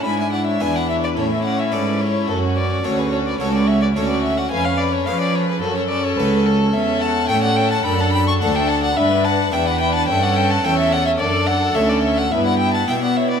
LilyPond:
<<
  \new Staff \with { instrumentName = "Violin" } { \time 4/4 \key fis \minor \tempo 4 = 108 b''16 gis''16 fis''16 e''16 gis''16 fis''16 e''16 d''16 cis''16 e''16 fis''16 e''16 d''8 cis''8 | a'8 d''8 cis''16 b'16 cis''16 d''16 cis''16 d''16 e''16 d''16 cis''16 d''16 e''16 fis''16 | gis''16 eis''16 d''16 cis''16 eis''16 d''16 cis''16 b'16 a'16 cis''16 d''16 cis''16 b'8 a'8 | \key d \major e''8 a''8 g''16 fis''16 g''16 a''16 b''16 a''16 b''16 cis'''16 a''16 g''16 a''16 fis''16 |
e''8 a''8 g''16 fis''16 g''16 a''16 g''16 fis''16 g''16 a''16 g''16 e''16 fis''16 e''16 | d''8 fis''8 e''16 d''16 e''16 fis''16 e''16 fis''16 g''16 a''16 g''16 fis''16 e''16 d''16 | }
  \new Staff \with { instrumentName = "Violin section" } { \time 4/4 \key fis \minor gis''16 e''16 d''16 cis''16 e''16 d''16 cis''16 b'16 a'16 cis''16 d''16 cis''16 b'8 a'8 | fis'8 b'8 a'16 gis'16 a'16 b'16 a'16 b'16 cis''16 b'16 a'16 b'16 cis''16 d''16 | eis''16 cis''16 b'16 a'16 cis''16 b'16 a'16 gis'16 fis'16 a'16 b'16 a'16 gis'8 fis'8 | \key d \major cis''8 fis''8 e''16 d''16 e''16 fis''16 g''16 fis''16 g''16 a''16 fis''16 e''16 fis''16 d''16 |
b'8 fis''8 e''16 d''16 e''16 fis''16 e''16 d''16 e''16 fis''16 e''16 cis''16 d''16 cis''16 | a'8 d''8 cis''16 b'16 cis''16 d''16 b'16 d''16 e''16 fis''16 e''16 d''16 cis''16 b'16 | }
  \new Staff \with { instrumentName = "Violin section" } { \time 4/4 \key fis \minor e'4 e'4 e'2 | fis'4 fis'4 fis'4 fis'4 | b'4 b'4 a'2 | \key d \major a'4 a'4 a'4 a'4 |
b'4 b'4 a'4 a'4 | a'2 e'4 e'4 | }
  \new Staff \with { instrumentName = "Harpsichord" } { \time 4/4 \key fis \minor gis,4 <e, d' e' b'>4 a,4 <gis, cis' e' a'>4 | fis,4 <d, cis' fis' a'>4 <cis, cis' fis' a'>4 <d, cis' fis' a'>4 | eis,4 <eis cis' gis' b'>4 fis,4 <cis, cis' fis' a'>4 | \key d \major e,4 <a, cis' g' a'>4 fis,4 <d, d' fis' a'>4 |
g,4 <e, d' e' b'>4 g,4 <e, cis' e' a'>4 | fis,4 <d, a fis' a'>4 g,4 <b, b e' g'>4 | }
  \new Staff \with { instrumentName = "Viola section" } { \time 4/4 \key fis \minor d'4 d'4 cis'2 | cis'4 cis'4 cis'4 cis'4 | cis'4 cis'4 cis'2 | \key d \major cis'4 cis'4 d'4 d'4 |
d'4 d'4 cis'4 cis'4 | d'4 cis'4 b4 b4 | }
  \new Staff \with { instrumentName = "Cello section" } { \clef bass \time 4/4 \key fis \minor gis,4 e,4 a,4 gis,4 | fis,4 d,4 cis,4 d,4 | eis,4 eis4 fis,4 cis,4 | \key d \major e,4 a,4 fis,4 d,4 |
g,4 e,4 g,4 e,4 | fis,4 d,4 g,4 b,4 | }
>>